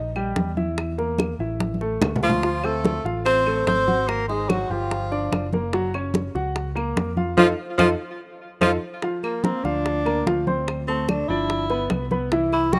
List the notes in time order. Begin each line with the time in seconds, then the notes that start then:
Already playing: A#1
0.15 G3 G4, high bongo, high conga, claves
0.36 E2, high bongo, low bongo, high conga
0.57 E4 E5, high conga
0.78 high bongo, high conga, claves
0.98 A#3 A#4, high bongo, high conga
1.18 high bongo, high conga, claves
1.39 A1 E4 E5, high conga
1.60 high bongo, high conga
1.74 high conga
1.81 A3 A4, high bongo
2.01 D2, high bongo, low bongo, low conga, claves
2.16 low conga
2.23 F3 A3 F4 A4, high bongo
2.29 low conga
2.43 F3 F4, high bongo, high conga
2.64 A3 C4 A4 C5, high bongo, high conga, claves
2.85 high bongo, high conga
3.04 A1 F4 F5, high bongo, high conga
3.25 C4 C5, high bongo, high conga
3.46 A3 A4, high bongo, high conga, claves
3.66 G#1 C4 C5, high bongo, low bongo, high conga
3.87 F#4 F#5, high conga
4.07 A#3 A#4, high bongo, high conga, claves
4.28 G#3 D#4 G#4 D#5, high bongo, high conga
4.49 F#3 F#4, high bongo, high conga, claves
4.69 G1 F3 F4 G4 G5, high conga
4.91 high bongo, high conga
5.12 D4 D5, high bongo, high conga
5.31 F#1, high bongo, low bongo, high conga, claves
5.53 A#3 A#4, high bongo, high conga
5.73 F#3 F#4, high bongo, high conga
5.94 C#4 C#5, high bongo, high conga, claves
6.14 high bongo, high conga
6.35 C#2 F#4 F#5, high bongo, high conga
6.55 high bongo, high conga
6.76 A#3 A#4, high bongo, high conga, claves
6.96 F2, high bongo, low bongo, high conga
7.17 F4 F5, high conga
7.37 F2 F3 D#4 F4 A4, low bongo, high conga, claves
7.77 F2 F3 D#4 F4 A4, low bongo, high conga, claves
8.61 F2 F3 D#4 F4 A4, low bongo, high conga, claves
9.02 F3 F4 F5, high bongo, high conga
9.23 A#3, high bongo, high conga, claves
9.43 A#3 C4 A#4 A#5, high bongo, high conga
9.64 D2 F3 D4 F4 F5, high bongo, high conga
9.85 high bongo, high conga
10.06 A#3 A#4 A#5, high bongo, high conga, claves
10.26 D2 F3 F4 F5, high bongo, low bongo, high conga
10.47 C4 C5 C6, high conga
10.68 high bongo, high conga, claves
10.88 A3 C4 A4 A5, high bongo, high conga
11.09 D4, high bongo, high conga, claves
11.28 G1 F3 D4 E4 D5, high conga
11.50 high bongo, high conga
11.70 B3 B4 B5, high bongo, high conga
11.90 C2, high bongo, low bongo, high conga, claves
12.11 B3 B4 B5, high bongo, high conga
12.32 E3 E4 E5, high bongo, high conga
12.52 E4, high bongo, high conga, claves
12.73 G3 F#4 G4 G5, high bongo, high conga